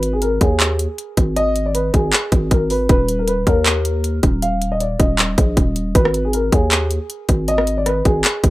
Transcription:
0.00 0.39 G#1 loud
0.00 0.11 B4 loud
0.00 closed hi-hat medium
0.13 0.20 G#4 medium
0.22 0.38 A#4 medium
0.22 closed hi-hat medium
0.41 0.87 D#2 loud
0.41 1.32 G#4 medium
0.41 kick medium
0.41 closed hi-hat medium
0.60 clap loud
0.60 closed hi-hat medium
0.79 closed hi-hat medium
0.98 closed hi-hat medium
1.17 1.91 G#1 loud
1.17 kick medium
1.17 closed hi-hat medium
1.36 1.64 D#5 loud
1.36 closed hi-hat medium
1.56 closed hi-hat medium
1.66 1.73 D5 medium
1.75 1.91 B4 medium
1.75 closed hi-hat medium
1.94 2.12 G#1 loud
1.94 2.48 G#4 medium
1.94 kick medium
1.94 closed hi-hat medium
2.13 clap loud
2.13 closed hi-hat medium
2.32 2.50 G#1 loud
2.32 kick loud
2.32 closed hi-hat medium
2.51 2.88 G#1 loud
2.51 2.67 A#4 medium
2.51 kick medium
2.51 closed hi-hat medium
2.70 2.86 B4 medium
2.70 open hi-hat medium
2.89 3.44 D#1 loud
2.89 3.17 B4 loud
2.89 kick loud
2.89 closed hi-hat medium
3.08 closed hi-hat medium
3.19 3.26 A#4 medium
3.28 3.44 B4 medium
3.28 closed hi-hat medium
3.47 4.20 D#2 loud
3.47 4.38 A#4 loud
3.47 kick medium
3.47 closed hi-hat medium
3.66 clap loud
3.66 closed hi-hat medium
3.85 closed hi-hat medium
4.04 closed hi-hat medium
4.23 4.97 D#1 loud
4.23 kick medium
4.23 closed hi-hat medium
4.42 4.70 F5 loud
4.42 closed hi-hat medium
4.62 closed hi-hat medium
4.72 4.79 D#5 medium
4.80 4.97 D5 medium
4.80 closed hi-hat medium
5.00 5.36 D#1 loud
5.00 5.91 D#5 medium
5.00 kick medium
5.00 closed hi-hat medium
5.19 clap loud
5.19 closed hi-hat medium
5.38 5.56 A#1 loud
5.38 kick loud
5.38 closed hi-hat medium
5.57 5.94 D#1 loud
5.57 kick medium
5.57 closed hi-hat medium
5.76 closed hi-hat medium
5.95 6.50 G#1 loud
5.95 6.23 B4 loud
5.95 kick loud
5.95 closed hi-hat medium
6.05 cross-stick medium
6.14 closed hi-hat medium
6.25 6.32 G#4 medium
6.33 6.50 A#4 medium
6.33 closed hi-hat medium
6.52 6.99 D#2 loud
6.52 7.44 G#4 medium
6.52 kick medium
6.52 closed hi-hat medium
6.71 clap loud
6.71 closed hi-hat medium
6.91 closed hi-hat medium
7.10 closed hi-hat medium
7.29 8.02 G#1 loud
7.29 kick medium
7.29 closed hi-hat medium
7.48 7.76 D#5 loud
7.48 closed hi-hat medium
7.58 cross-stick medium
7.67 closed hi-hat medium
7.77 7.85 D5 medium
7.86 8.02 B4 medium
7.86 cross-stick medium
7.86 closed hi-hat medium
8.05 8.24 G#1 loud
8.05 8.50 G#4 medium
8.05 kick medium
8.05 closed hi-hat medium
8.24 clap loud
8.24 closed hi-hat medium
8.44 8.50 G#1 loud
8.44 kick loud
8.44 closed hi-hat medium

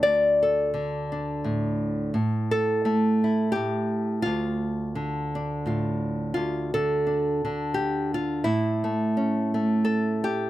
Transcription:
0.00 0.72 D3 medium
0.00 1.12 D5 loud
0.04 2.15 D2 medium
0.43 2.14 A4 medium
0.74 2.14 D3 medium
1.12 2.10 D4 soft
1.44 2.13 A2 medium
2.14 3.55 A2 medium
2.51 3.51 A4 loud
2.85 4.95 A3 medium
3.24 4.25 E4 soft
3.52 4.25 A2 medium
3.52 4.22 G4 medium
4.22 6.35 D2 medium
4.22 5.66 F4 medium
4.95 6.73 D3 medium
5.35 6.32 D4 soft
5.66 6.36 A2 medium
5.66 6.32 F4 soft
6.34 8.46 D2 medium
6.34 6.73 F4 medium
6.74 7.43 D3 medium
6.74 7.74 A4 medium
7.07 8.43 D4 soft
7.45 8.46 D3 medium
7.74 8.14 G4 medium
8.14 8.46 F4 medium
8.44 10.50 A2 medium
8.44 10.50 E4 medium
8.84 9.54 A3 medium
9.17 10.50 C#4 soft
9.54 10.50 A3 medium
9.85 10.24 A4 medium
10.24 10.50 G4 medium

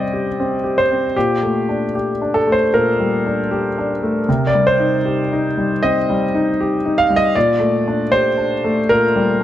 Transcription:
0.00 1.17 C3 soft
0.00 1.18 G3 soft
0.00 0.40 C4 soft
0.00 0.13 G4 soft
0.00 0.78 C5 medium
0.00 1.18 D5 medium
0.00 1.18 D#5 medium
0.13 0.54 G4 soft
0.40 0.80 C4 soft
0.64 1.05 G4 soft
0.78 1.16 C5 medium
0.92 1.16 C4 soft
1.16 2.69 A#2 soft
1.16 1.94 G4 medium
1.43 1.84 A3 soft
1.69 2.10 D4 soft
1.95 2.36 G4 soft
2.22 2.62 D4 soft
2.34 2.53 A4 medium
2.47 2.88 A3 soft
2.52 2.72 C5 medium
2.74 4.24 A#2 soft
2.74 4.47 A#4 medium
2.99 3.40 G3 soft
3.26 3.66 D4 soft
3.51 3.92 G4 soft
3.78 4.18 D4 soft
4.03 4.28 A3 soft
4.29 5.79 C3 medium
4.47 4.66 D5 medium
4.55 4.95 G3 soft
4.67 5.82 C5 medium
4.79 5.21 D#4 soft
5.05 5.46 G4 soft
5.33 5.73 D#4 soft
5.58 5.98 G3 soft
5.83 6.24 C4 soft
5.83 6.98 D#5 medium
6.10 6.50 G3 soft
6.35 6.75 D#4 soft
6.60 7.01 G4 soft
6.85 7.26 D#4 soft
6.98 7.17 F5 medium
7.10 7.36 G3 soft
7.16 7.35 D#5 medium
7.35 8.86 A#2 medium
7.35 8.12 D5 medium
7.60 8.01 A3 soft
7.88 8.29 D4 soft
8.12 8.54 G4 soft
8.12 8.89 C5 medium
8.38 8.79 D4 soft
8.64 9.05 A3 soft
8.89 9.44 A#2 soft
8.89 9.44 A#4 medium
9.16 9.44 G3 soft
9.40 9.44 D4 soft

